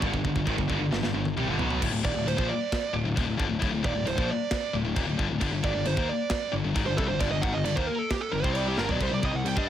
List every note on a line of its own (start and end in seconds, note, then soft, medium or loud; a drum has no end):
0.01 0.13 G1 medium
0.01 0.11 G2 medium
0.01 0.12 D3 medium
0.01 kick loud
0.01 china soft
0.12 0.24 G1 medium
0.12 0.23 G2 medium
0.12 0.23 D3 medium
0.12 kick medium
0.24 0.35 G1 medium
0.24 0.34 G2 medium
0.24 0.35 D3 medium
0.24 kick medium
0.35 0.46 G1 medium
0.35 0.45 G2 medium
0.35 0.46 D3 medium
0.35 kick medium
0.45 0.58 G#1 medium
0.45 0.57 G#2 medium
0.45 0.57 D#3 loud
0.45 kick loud
0.45 china medium
0.57 0.69 G1 medium
0.57 0.67 G2 medium
0.57 0.68 D3 medium
0.57 kick medium
0.68 0.79 G1 loud
0.68 0.78 G2 loud
0.68 0.79 D3 medium
0.68 kick medium
0.80 0.91 G1 medium
0.80 0.90 G2 medium
0.80 0.90 D3 medium
0.91 1.02 G1 medium
0.91 1.02 G2 medium
0.91 1.02 D3 medium
0.91 snare medium
1.03 1.13 G1 medium
1.03 1.13 G2 medium
1.03 1.13 D3 medium
1.03 snare medium
1.14 1.35 G1 medium
1.14 1.33 G2 medium
1.14 1.33 D3 medium
1.25 high tom medium
1.36 1.47 C2 medium
1.36 1.48 C3 loud
1.36 1.48 G3 medium
1.36 mid tom medium
1.48 1.58 G1 loud
1.48 1.58 G2 medium
1.48 1.59 D3 medium
1.59 1.80 B1 medium
1.59 1.81 B2 medium
1.59 1.81 F#3 medium
1.59 1.82 B3 loud
1.59 floor tom medium
1.70 floor tom medium
1.81 1.92 D1 loud
1.81 1.92 D2 loud
1.81 1.92 A2 loud
1.81 kick loud
1.81 crash loud
1.81 crash medium
1.92 2.03 D1 medium
1.92 2.03 D2 medium
1.92 2.04 A2 medium
2.03 2.14 D#1 medium
2.03 2.14 D#2 medium
2.03 2.15 A#2 loud
2.03 2.27 D5 medium
2.03 kick loud
2.14 2.25 D1 medium
2.14 2.24 D2 medium
2.14 2.25 A2 medium
2.26 2.37 D1 medium
2.26 2.36 D2 medium
2.26 2.37 A2 medium
2.26 2.50 C5 medium
2.26 crash medium
2.37 2.49 A#1 loud
2.37 2.48 A#2 medium
2.37 2.48 F3 loud
2.37 kick loud
2.50 2.92 D5 medium
2.72 kick loud
2.72 snare loud
2.72 crash medium
2.93 3.05 D1 medium
2.93 3.04 D2 medium
2.93 3.04 A2 medium
3.05 3.16 D1 medium
3.05 3.15 D2 medium
3.05 3.16 A2 medium
3.16 3.27 D#1 medium
3.16 3.26 D#2 medium
3.16 3.26 A#2 loud
3.16 kick loud
3.16 crash medium
3.26 3.39 D1 medium
3.26 3.37 D2 medium
3.26 3.37 A2 medium
3.37 3.50 G1 medium
3.37 3.48 G2 medium
3.37 3.49 D3 medium
3.37 kick loud
3.49 3.61 D1 medium
3.49 3.58 D2 medium
3.49 3.59 A2 medium
3.59 3.72 D1 loud
3.59 3.70 D2 loud
3.59 3.71 A2 loud
3.59 kick loud
3.59 crash medium
3.72 3.84 D1 medium
3.72 3.82 D2 medium
3.72 3.83 A2 medium
3.83 3.95 D#1 medium
3.83 3.94 D#2 loud
3.83 3.94 A#2 loud
3.83 4.07 D5 medium
3.83 kick loud
3.94 4.06 D1 medium
3.94 4.04 D2 medium
3.94 4.05 A2 medium
4.05 4.17 D1 medium
4.05 4.16 D2 medium
4.05 4.17 A2 medium
4.05 4.29 C5 medium
4.05 crash medium
4.16 4.28 A#1 loud
4.16 4.28 A#2 loud
4.16 4.28 F3 loud
4.16 kick loud
4.31 4.72 D5 medium
4.51 kick loud
4.51 snare loud
4.51 crash medium
4.74 4.84 D1 medium
4.74 4.83 D2 medium
4.74 4.84 A2 medium
4.85 4.96 D1 medium
4.85 4.95 D2 medium
4.85 4.96 A2 medium
4.96 5.07 D#1 medium
4.96 5.06 D#2 medium
4.96 5.07 A#2 loud
4.96 kick loud
4.96 crash medium
5.07 5.18 D1 medium
5.07 5.17 D2 medium
5.07 5.18 A2 medium
5.18 5.30 G1 medium
5.18 5.29 G2 medium
5.18 5.29 D3 medium
5.18 kick medium
5.29 5.41 D1 medium
5.29 5.40 D2 medium
5.29 5.41 A2 medium
5.40 5.52 G1 medium
5.40 5.51 G2 loud
5.40 5.51 D3 loud
5.40 kick loud
5.40 crash medium
5.52 5.63 G1 medium
5.52 5.63 G2 medium
5.52 5.63 D3 medium
5.63 5.74 G#1 medium
5.63 5.74 G#2 medium
5.63 5.74 D#3 loud
5.63 5.87 D5 medium
5.63 kick loud
5.74 5.86 G1 medium
5.74 5.84 G2 medium
5.74 5.84 D3 medium
5.85 5.97 G1 medium
5.85 5.97 G2 medium
5.85 5.96 D3 medium
5.85 6.08 C5 medium
5.85 crash medium
5.97 6.08 D#2 loud
5.97 6.08 D#3 loud
5.97 6.08 A#3 loud
5.97 kick loud
6.10 6.51 D5 loud
6.30 kick loud
6.30 snare loud
6.30 crash medium
6.52 6.64 G1 medium
6.52 6.63 G2 medium
6.52 6.63 D3 medium
6.64 6.75 G1 medium
6.64 6.74 G2 medium
6.64 6.75 D3 medium
6.74 6.86 G#1 loud
6.74 6.85 G#2 loud
6.74 6.86 D#3 loud
6.74 kick loud
6.74 crash medium
6.86 6.98 G1 medium
6.86 6.97 G2 medium
6.86 6.98 D3 medium
6.86 6.97 C5 medium
6.97 7.09 C2 medium
6.97 7.08 C3 medium
6.97 7.09 G3 loud
6.97 7.08 A4 medium
6.97 kick loud
7.08 7.20 G1 medium
7.08 7.18 G2 medium
7.08 7.19 D3 medium
7.08 7.20 C5 medium
7.19 7.31 G1 medium
7.19 7.30 G2 medium
7.19 7.31 D3 medium
7.19 7.31 D5 medium
7.19 kick loud
7.19 crash medium
7.31 7.42 G1 medium
7.31 7.41 G2 medium
7.31 7.42 D3 medium
7.31 7.43 D#5 medium
7.42 7.54 G#1 loud
7.42 7.53 G#2 medium
7.42 7.53 D#3 loud
7.42 7.53 F#5 loud
7.42 kick loud
7.53 7.65 G1 medium
7.53 7.63 G2 medium
7.53 7.63 D3 medium
7.53 7.64 D#5 loud
7.64 7.76 G1 medium
7.64 7.76 G2 medium
7.64 7.76 D3 medium
7.64 7.76 D5 medium
7.64 crash medium
7.76 7.88 D#2 loud
7.76 7.87 D#3 medium
7.76 7.88 A#3 loud
7.76 7.87 C5 medium
7.76 kick loud
7.87 7.98 A#4 medium
7.98 8.10 A4 medium
8.10 8.22 G4 medium
8.10 kick loud
8.10 snare loud
8.10 crash medium
8.21 8.32 A4 medium
8.32 8.43 G1 medium
8.32 8.43 G2 medium
8.32 8.43 D3 medium
8.32 8.43 A#4 medium
8.43 8.76 C2 medium
8.43 8.77 C3 medium
8.43 8.77 G3 medium
8.43 8.78 C4 medium
8.43 8.56 C5 loud
8.43 kick loud
8.55 8.67 D5 loud
8.55 crash medium
8.68 8.78 G4 medium
8.78 8.89 G1 medium
8.78 8.89 G2 medium
8.78 8.89 D3 medium
8.78 8.89 A#4 loud
8.78 snare medium
8.89 9.00 B1 medium
8.89 9.00 B2 loud
8.89 9.00 F#3 loud
8.89 9.01 D5 medium
8.89 floor tom medium
9.00 9.11 C2 medium
9.00 9.10 C3 medium
9.00 9.11 G3 loud
9.00 9.13 C5 medium
9.00 kick loud
9.00 crash medium
9.11 9.22 C2 medium
9.11 9.21 C3 medium
9.11 9.22 G3 medium
9.11 9.24 D5 medium
9.22 9.33 C2 medium
9.22 9.33 C3 medium
9.22 9.33 G3 loud
9.22 9.35 D#5 medium
9.22 kick loud
9.34 9.44 C2 medium
9.34 9.44 C3 medium
9.34 9.44 G3 medium
9.34 9.48 F#5 medium
9.45 9.56 C2 medium
9.45 9.57 C3 medium
9.45 9.55 G3 medium
9.45 9.58 G5 loud
9.45 crash medium
9.56 9.67 G2 loud
9.56 9.67 G3 loud
9.56 9.67 D4 loud
9.56 9.68 D#5 medium
9.56 kick loud